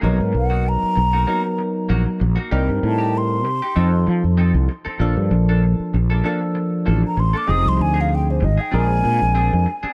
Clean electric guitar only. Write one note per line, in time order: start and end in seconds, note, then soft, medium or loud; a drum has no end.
0.01 0.20 F#3 medium
0.01 0.19 A#3 medium
0.01 0.18 D#4 medium
0.01 0.18 F#4 medium
0.19 muted clean electric guitar stroke soft
0.32 muted clean electric guitar stroke soft
0.50 0.64 A#3 soft
0.50 0.64 D#4 soft
0.50 0.64 F#4 soft
0.65 muted clean electric guitar stroke soft
0.95 muted clean electric guitar stroke soft
1.13 1.26 A#3 soft
1.13 1.26 D#4 soft
1.13 1.26 F#4 medium
1.27 1.44 F#3 medium
1.27 1.43 A#3 medium
1.27 1.42 D#4 medium
1.27 1.43 F#4 medium
1.44 muted clean electric guitar stroke soft
1.58 muted clean electric guitar stroke soft
1.89 2.06 F#3 medium
1.89 2.05 A#3 medium
1.89 2.06 D#4 medium
1.89 2.05 F#4 medium
2.06 muted clean electric guitar stroke soft
2.20 muted clean electric guitar stroke soft
2.36 2.50 A#3 soft
2.36 2.50 D#4 medium
2.36 2.51 F#4 medium
2.51 2.69 A#3 medium
2.51 2.69 D#4 medium
2.51 2.68 G4 medium
2.69 muted clean electric guitar stroke soft
2.83 muted clean electric guitar stroke soft
2.98 3.13 D#4 soft
2.98 3.14 G4 soft
3.15 muted clean electric guitar stroke soft
3.45 muted clean electric guitar stroke soft
3.62 3.75 D#4 soft
3.62 3.75 G4 soft
3.75 3.93 F3 medium
3.75 3.91 C4 medium
3.75 3.91 D#4 medium
3.75 3.90 A4 medium
3.92 muted clean electric guitar stroke soft
4.07 muted clean electric guitar stroke soft
4.37 4.55 F3 medium
4.37 4.54 C4 medium
4.37 4.54 D#4 medium
4.37 4.54 A4 medium
4.55 muted clean electric guitar stroke soft
4.69 muted clean electric guitar stroke soft
4.85 4.99 C4 soft
4.85 4.99 D#4 medium
4.85 4.98 A4 medium
4.98 5.17 F3 medium
4.98 5.16 A#3 medium
4.98 5.16 D4 medium
4.98 5.15 A4 medium
5.16 muted clean electric guitar stroke soft
5.30 muted clean electric guitar stroke soft
5.49 5.62 A#3 soft
5.49 5.62 D4 soft
5.49 5.62 A4 medium
5.63 muted clean electric guitar stroke soft
5.94 muted clean electric guitar stroke soft
6.10 6.23 A#3 soft
6.10 6.23 D4 medium
6.10 6.23 A4 medium
6.23 6.41 F3 medium
6.23 6.40 A#3 medium
6.23 6.40 D4 medium
6.23 6.40 A4 medium
6.41 muted clean electric guitar stroke soft
6.55 muted clean electric guitar stroke soft
6.86 7.03 F3 medium
6.86 7.03 A#3 medium
6.86 7.02 D4 medium
6.86 7.02 A4 medium
7.03 muted clean electric guitar stroke soft
7.17 muted clean electric guitar stroke soft
7.33 7.47 A#3 soft
7.33 7.47 D4 soft
7.33 7.48 A4 medium
7.47 7.65 C4 medium
7.47 7.63 D#4 medium
7.47 7.63 G#4 medium
7.64 muted clean electric guitar stroke soft
7.77 muted clean electric guitar stroke soft
7.94 8.08 D#4 soft
7.94 8.08 G#4 soft
8.09 muted clean electric guitar stroke soft
8.40 muted clean electric guitar stroke soft
8.57 8.71 D#4 soft
8.57 8.71 G#4 soft
8.71 8.89 F3 medium
8.71 8.89 C4 medium
8.71 8.88 D4 medium
8.71 8.88 G#4 medium
8.89 muted clean electric guitar stroke soft
9.03 muted clean electric guitar stroke soft
9.35 9.52 F3 medium
9.35 9.52 C4 medium
9.35 9.52 D4 medium
9.35 9.52 G#4 medium
9.53 muted clean electric guitar stroke soft
9.66 muted clean electric guitar stroke soft
9.83 9.93 C4 soft
9.83 9.93 D4 medium
9.83 9.93 G#4 medium